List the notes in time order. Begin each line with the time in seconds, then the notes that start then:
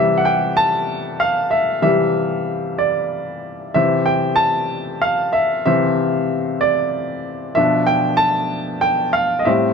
Already playing: C3 E3 G3 E5
0.17 F#5
0.25 G5
0.57 A5
1.20 F5
1.51 E5
1.82 C3 E3 G3 E5
2.78 D5
3.74 C3 E3 C4 E5
4.06 G5
4.36 A5
5.02 F5
5.33 E5
5.66 C3 E3 C4 E5
6.61 D5
7.55 B2 F3 D4 E5
7.87 G5
8.17 A5
8.81 G5
9.13 F5
9.39 D#5
9.45 A2 G3 C4 E5